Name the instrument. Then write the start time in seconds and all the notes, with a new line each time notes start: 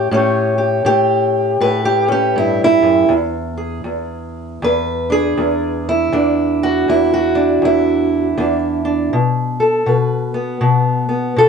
steel-string acoustic guitar
Already playing: A2
0.11 A2 C#4 G4 C#5
0.58 G4
0.85 A2 G4
1.61 A2 B4
1.85 G4
2.08 C#4 G4
2.36 G2 E4
2.64 E4
2.82 F#2
3.09 E2
3.57 G#4
3.84 E2
4.62 E2 B4
5.10 D4 G#4
5.38 E2
5.89 E4
6.12 E2 D4
6.63 F#4
6.88 E2 E4
7.14 F#4
7.35 D4
7.62 E2 E4
8.38 E2 D4
8.85 D4
9.13 B2
9.60 A4
9.86 B2 B4
10.34 B3
10.61 B2
11.09 B3
11.36 B2 A4